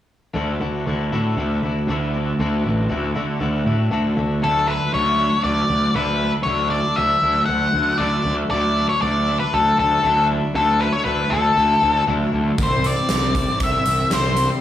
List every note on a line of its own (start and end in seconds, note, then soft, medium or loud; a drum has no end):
0.34 0.57 D2 medium
0.34 0.93 D3 medium
0.34 0.86 A3 medium
0.34 0.63 D4 medium
0.34 0.60 E4 medium
0.34 0.61 F#4 medium
0.60 0.83 D2 medium
0.60 0.87 D4 medium
0.60 0.89 E4 medium
0.60 0.88 F#4 medium
0.86 1.08 D2 medium
0.86 1.14 A3 medium
0.86 1.13 D4 medium
0.86 1.12 E4 medium
0.86 1.13 F#4 medium
1.12 1.34 A2 medium
1.12 1.66 D3 medium
1.12 1.37 A3 medium
1.12 1.38 D4 medium
1.12 1.40 E4 medium
1.12 1.39 F#4 medium
1.37 1.59 D2 medium
1.37 1.89 A3 medium
1.37 1.66 D4 medium
1.37 1.63 E4 medium
1.37 1.64 F#4 medium
1.63 1.85 D2 medium
1.63 1.90 D4 medium
1.63 1.91 E4 medium
1.63 1.90 F#4 medium
1.88 2.32 D2 medium
1.88 2.39 D3 medium
1.88 2.40 A3 medium
1.88 2.17 D4 medium
1.88 2.14 E4 medium
1.88 2.15 F#4 medium
2.14 2.40 D4 soft
2.14 2.41 E4 medium
2.14 2.40 F#4 soft
2.39 2.61 D2 medium
2.39 2.90 D3 medium
2.39 2.88 A3 medium
2.39 2.66 D4 medium
2.39 2.63 E4 medium
2.39 2.65 F#4 medium
2.64 2.87 A1 medium
2.64 2.89 D4 medium
2.64 2.91 E4 medium
2.64 2.90 F#4 medium
2.89 3.12 D2 medium
2.89 3.16 A3 medium
2.89 3.15 D4 medium
2.89 3.14 E4 medium
2.89 3.15 F#4 medium
3.15 3.37 D3 medium
3.15 3.68 D3 medium
3.15 3.39 A3 medium
3.15 3.40 D4 medium
3.15 3.42 E4 medium
3.15 3.41 F#4 medium
3.40 3.63 D2 medium
3.40 3.91 A3 medium
3.40 3.68 D4 medium
3.40 3.65 E4 medium
3.40 3.66 F#4 medium
3.66 3.88 A2 medium
3.66 3.92 D4 soft
3.66 3.93 E4 medium
3.66 3.92 F#4 medium
3.91 4.13 D2 medium
3.91 4.41 D3 medium
3.91 4.41 A3 medium
3.91 4.18 D4 medium
3.91 4.15 E4 medium
3.91 4.17 F#4 medium
4.17 4.39 D2 medium
4.17 4.43 D4 soft
4.17 4.41 E4 medium
4.17 4.42 F#4 medium
4.42 4.77 D2 medium
4.42 4.98 D3 medium
4.42 4.92 F#3 medium
4.42 4.71 A3 medium
4.42 4.69 D4 medium
4.42 4.67 E4 medium
4.42 4.70 A4 medium
4.67 4.93 A3 soft
4.67 4.94 D4 medium
4.67 4.95 E4 medium
4.67 4.91 B4 medium
4.92 5.29 D2 medium
4.92 5.95 F#3 medium
4.92 5.21 A3 medium
4.92 5.19 D4 medium
4.92 5.18 E4 medium
4.92 5.43 C#5 medium
5.18 5.96 A3 medium
5.18 5.97 D4 medium
5.18 5.98 E4 medium
5.44 5.62 D2 medium
5.44 5.95 D5 medium
5.70 5.87 D2 medium
5.95 6.30 D2 medium
5.95 6.46 D3 medium
5.95 6.47 F#3 medium
5.95 6.24 A3 medium
5.95 6.22 D4 medium
5.95 6.21 E4 medium
5.95 6.31 B4 medium
6.21 6.48 A3 soft
6.21 6.49 D4 medium
6.21 6.49 E4 medium
6.43 6.81 D2 medium
6.43 7.04 D3 medium
6.43 6.97 F#3 medium
6.43 6.70 C#5 medium
6.48 6.74 A3 medium
6.48 6.73 D4 loud
6.48 6.71 E4 medium
6.70 6.99 D4 medium
6.70 7.00 E4 medium
6.70 6.98 D5 medium
6.75 6.99 A3 soft
6.96 7.15 D2 medium
6.96 8.01 F#3 medium
6.96 7.26 A3 medium
6.96 7.24 D4 medium
6.96 7.45 E5 medium
7.01 7.23 E4 medium
7.23 7.40 D2 medium
7.23 8.02 A3 medium
7.23 8.02 D4 medium
7.23 8.03 E4 medium
7.46 7.66 D2 medium
7.46 8.00 F#5 loud
7.74 7.91 D2 medium
7.98 8.17 D2 medium
7.98 8.52 D3 medium
7.98 8.52 F#3 medium
7.98 8.34 D5 medium
8.02 8.29 A3 medium
8.02 8.27 D4 medium
8.02 8.26 E4 medium
8.25 8.42 D2 medium
8.25 8.54 D4 medium
8.25 8.54 E4 medium
8.30 8.53 A3 medium
8.51 8.85 D2 medium
8.51 9.09 D3 medium
8.51 9.02 F#3 medium
8.51 8.80 A3 medium
8.51 8.79 D4 medium
8.51 8.77 E4 medium
8.51 8.89 D5 loud
8.77 9.04 A3 soft
8.77 9.05 D4 medium
8.77 9.05 E4 medium
8.89 9.01 C#5 medium
9.02 9.36 D2 medium
9.02 10.04 F#3 medium
9.02 9.31 A3 medium
9.02 9.29 D4 medium
9.02 9.39 D5 medium
9.06 9.28 E4 medium
9.28 10.04 A3 medium
9.28 10.04 D4 medium
9.28 10.06 E4 medium
9.40 9.53 B4 medium
9.54 9.71 D2 medium
9.54 9.78 A4 medium
9.79 9.96 D2 medium
9.79 10.26 A4 medium
10.03 10.39 D2 medium
10.03 10.53 D3 medium
10.03 10.55 F#3 medium
10.03 10.31 A3 medium
10.03 10.30 D4 medium
10.03 10.29 E4 medium
10.30 10.55 A3 medium
10.30 10.56 D4 medium
10.30 10.58 E4 medium
10.54 10.89 D2 medium
10.54 11.06 D3 medium
10.54 11.04 F#3 medium
10.54 10.82 A3 medium
10.54 10.81 D4 medium
10.54 10.80 E4 loud
10.54 10.82 A4 medium
10.80 11.05 A3 medium
10.80 11.06 D4 medium
10.80 11.08 E4 medium
10.80 10.93 B4 medium
10.93 11.04 C#5 medium
11.05 11.23 D2 medium
11.05 11.56 F#3 medium
11.05 11.32 A3 medium
11.05 11.31 D4 medium
11.05 11.29 E4 medium
11.05 11.32 B4 loud
11.30 11.49 D2 medium
11.30 12.07 A3 medium
11.30 12.08 D4 medium
11.30 12.10 E4 medium
11.30 12.03 A4 medium
11.58 11.74 D2 medium
11.83 12.00 D2 medium
12.07 12.25 D2 medium
12.07 12.57 D3 medium
12.07 12.57 F#3 medium
12.07 12.34 A3 medium
12.07 12.33 D4 medium
12.07 12.32 E4 medium
12.32 12.50 D2 medium
12.32 12.58 A3 medium
12.32 12.57 D4 medium
12.32 12.60 E4 medium
12.58 12.93 C2 medium
12.58 14.10 C3 medium
12.58 13.09 E3 medium
12.58 12.86 G3 medium
12.58 12.85 C4 medium
12.58 12.83 E4 medium
12.58 kick loud
12.58 closed hi-hat medium
12.63 12.87 C5 medium
12.83 13.10 G3 medium
12.83 13.11 C4 medium
12.83 13.12 E4 medium
12.83 13.58 D5 medium
12.83 closed hi-hat medium
13.09 13.44 C2 medium
13.09 14.11 E3 medium
13.09 13.37 G3 medium
13.09 13.35 C4 medium
13.09 13.34 E4 medium
13.09 snare loud
13.09 closed hi-hat medium
13.34 14.11 G3 medium
13.34 14.12 C4 medium
13.34 14.13 E4 medium
13.34 kick medium
13.34 closed hi-hat medium
13.60 13.77 C2 medium
13.60 14.14 E5 medium
13.60 kick loud
13.60 closed hi-hat medium
13.86 14.03 C2 medium
13.86 closed hi-hat medium
14.10 14.46 C2 medium
14.10 14.60 C3 medium
14.10 14.61 E3 medium
14.10 14.37 G3 medium
14.10 14.36 C4 medium
14.10 14.35 E4 medium
14.10 14.48 C5 medium
14.10 snare loud
14.10 closed hi-hat medium
14.36 14.61 G3 medium
14.36 14.61 C4 medium
14.36 14.61 E4 medium
14.36 closed hi-hat medium